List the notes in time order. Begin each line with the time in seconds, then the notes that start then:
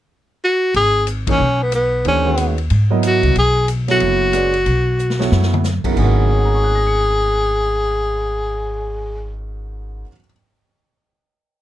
0.44 F#4
0.74 G#1 G#4, ride
1.07 hi-hat pedal, ride
1.27 E3 A#3 D#4 G#4 C#5, kick, ride
1.31 C#4
1.40 B1
1.63 B3
1.72 B3, cross-stick, hi-hat pedal, ride
2.05 D#2 E3 A3 C#4 D4 G4 C5, ride
2.25 D#3 G#3 C#4 F#4 B4
2.37 hi-hat pedal, ride
2.58 ride
2.70 G#2, ride
2.90 F#3 B3 E4 A#4 D#5
3.03 F#4, cross-stick, hi-hat pedal, ride
3.23 C#2, ride
3.35 B1 G#4, ride
3.68 hi-hat pedal, ride
3.88 F#3 B3 E4 F#4 A4 C#5, snare, ride
4.00 F#1, ride
4.33 G#3 C#4 F#4 B4 D5, cross-stick, hi-hat pedal, ride
4.54 ride
4.66 B1, ride
4.99 hi-hat pedal
5.10 snare
5.19 F#3 B3 E4 A4 C#5, snare
5.31 F#2, snare
5.42 snare
5.54 mid tom
5.64 snare, hi-hat pedal
5.84 C#3 F#3 B3 E4 A#4, muted upright bass stroke, kick, crash
5.91 G#2 D#3
5.96 G#1 B3 C#4 G#4, kick, crash
6.01 F#4 A#4
6.16 cymbal swell
6.29 C#5
6.37 F#5
6.45 A#5
6.54 C#6
6.64 F#6
6.75 A#6
6.87 C#7